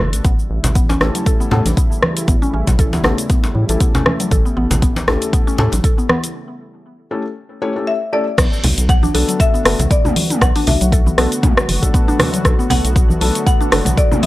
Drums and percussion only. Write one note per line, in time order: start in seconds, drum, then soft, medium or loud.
0.13 closed hi-hat medium
0.13 shaker medium
0.25 kick loud
0.25 closed hi-hat soft
0.25 high conga medium
0.25 shaker medium
0.39 shaker soft
0.64 closed hi-hat medium
0.64 djembe slap medium
0.64 low conga medium
0.64 shaker medium
0.75 kick loud
0.75 closed hi-hat soft
0.75 shaker medium
0.90 djembe slap medium
0.90 high conga medium
0.90 shaker soft
1.01 cross-stick medium
1.01 djembe tone medium
1.15 closed hi-hat medium
1.15 shaker medium
1.26 kick loud
1.26 closed hi-hat soft
1.26 shaker medium
1.41 shaker soft
1.51 djembe slap medium
1.51 low conga medium
1.66 closed hi-hat medium
1.66 high conga medium
1.66 djembe tone medium
1.66 shaker medium
1.77 kick loud
1.77 closed hi-hat soft
1.77 shaker medium
1.92 shaker soft
2.03 cross-stick medium
2.03 high conga loud
2.17 closed hi-hat medium
2.17 shaker medium
2.28 kick loud
2.28 closed hi-hat soft
2.28 high conga medium
2.28 shaker medium
2.43 shaker soft
2.67 kick medium
2.67 closed hi-hat medium
2.67 djembe slap medium
2.67 low conga loud
2.67 shaker medium
2.79 kick loud
2.79 closed hi-hat soft
2.79 shaker medium
2.93 djembe slap medium
2.93 high conga medium
2.93 shaker soft
3.04 cross-stick medium
3.04 djembe tone medium
3.18 closed hi-hat medium
3.18 shaker medium
3.30 kick loud
3.30 closed hi-hat soft
3.30 djembe tone medium
3.30 shaker medium
3.44 djembe slap medium
3.44 shaker soft
3.55 high conga medium
3.69 closed hi-hat medium
3.69 shaker medium
3.80 kick loud
3.80 closed hi-hat soft
3.80 shaker medium
3.95 djembe slap medium
3.95 low conga loud
3.95 shaker soft
4.06 cross-stick medium
4.06 high conga loud
4.06 low conga medium
4.20 closed hi-hat medium
4.20 shaker medium
4.31 kick loud
4.31 closed hi-hat soft
4.31 high conga medium
4.31 shaker medium
4.46 shaker soft
4.71 closed hi-hat medium
4.71 djembe slap medium
4.71 low conga loud
4.71 shaker medium
4.82 kick loud
4.82 closed hi-hat soft
4.82 shaker medium
4.96 djembe slap medium
4.96 high conga medium
4.96 shaker soft
5.08 cross-stick medium
5.08 djembe tone medium
5.22 closed hi-hat medium
5.22 shaker medium
5.33 kick loud
5.33 closed hi-hat soft
5.33 shaker medium
5.48 shaker soft
5.58 djembe slap medium
5.58 low conga medium
5.72 closed hi-hat medium
5.72 djembe tone medium
5.72 high conga medium
5.72 shaker medium
5.84 kick loud
5.84 closed hi-hat soft
5.84 shaker medium
5.99 shaker soft
6.09 cross-stick medium
6.09 high conga loud
6.24 closed hi-hat medium
6.24 shaker medium
8.38 kick loud
8.38 cross-stick medium
8.38 closed hi-hat soft
8.38 crash loud
8.38 high conga medium
8.38 shaker medium
8.53 shaker soft
8.64 open hi-hat medium
8.64 low conga loud
8.78 closed hi-hat medium
8.78 shaker medium
8.89 kick loud
8.89 closed hi-hat soft
8.89 shaker medium
9.03 high conga medium
9.03 shaker soft
9.15 open hi-hat medium
9.29 closed hi-hat medium
9.29 shaker medium
9.40 kick loud
9.40 closed hi-hat soft
9.40 shaker medium
9.55 shaker soft
9.65 cross-stick loud
9.65 open hi-hat medium
9.79 closed hi-hat medium
9.79 high conga medium
9.79 low conga loud
9.79 shaker medium
9.91 kick loud
9.91 closed hi-hat soft
9.91 shaker medium
10.05 mid tom medium
10.05 low conga loud
10.05 shaker soft
10.16 open hi-hat loud
10.16 high conga loud
10.30 closed hi-hat medium
10.30 mid tom medium
10.30 shaker medium
10.41 kick loud
10.41 cross-stick medium
10.41 closed hi-hat soft
10.41 high conga medium
10.41 shaker medium
10.56 open hi-hat medium
10.56 shaker soft
10.67 open hi-hat medium
10.67 low conga loud
10.81 closed hi-hat medium
10.81 shaker medium
10.92 kick loud
10.92 closed hi-hat soft
10.92 shaker medium
11.06 high conga medium
11.06 shaker soft
11.18 cross-stick medium
11.18 open hi-hat medium
11.32 closed hi-hat medium
11.32 shaker medium
11.43 kick loud
11.43 closed hi-hat soft
11.43 mid tom medium
11.43 low conga loud
11.43 shaker medium
11.57 cross-stick loud
11.57 shaker soft
11.68 open hi-hat loud
11.68 high conga medium
11.83 kick medium
11.83 closed hi-hat medium
11.83 shaker medium
11.94 kick loud
11.94 closed hi-hat soft
11.94 shaker medium
12.09 shaker soft
12.19 cross-stick loud
12.19 open hi-hat loud
12.19 mid tom medium
12.19 high conga loud
12.19 low conga loud
12.34 closed hi-hat medium
12.34 shaker medium
12.45 kick loud
12.45 cross-stick medium
12.45 closed hi-hat soft
12.45 high conga medium
12.45 shaker medium
12.60 shaker soft
12.70 open hi-hat medium
12.70 low conga loud
12.85 closed hi-hat medium
12.85 shaker medium
12.96 kick loud
12.96 closed hi-hat soft
12.96 shaker medium
13.10 high conga loud
13.10 shaker soft
13.21 open hi-hat medium
13.35 closed hi-hat medium
13.35 shaker medium
13.47 kick loud
13.47 closed hi-hat soft
13.47 shaker medium
13.61 shaker soft
13.72 cross-stick loud
13.72 open hi-hat medium
13.85 closed hi-hat medium
13.85 high conga medium
13.85 low conga medium
13.85 shaker medium
13.97 kick loud
13.97 closed hi-hat soft
13.97 shaker medium
14.11 mid tom loud
14.11 low conga loud
14.11 shaker soft
14.23 open hi-hat medium
14.23 high conga loud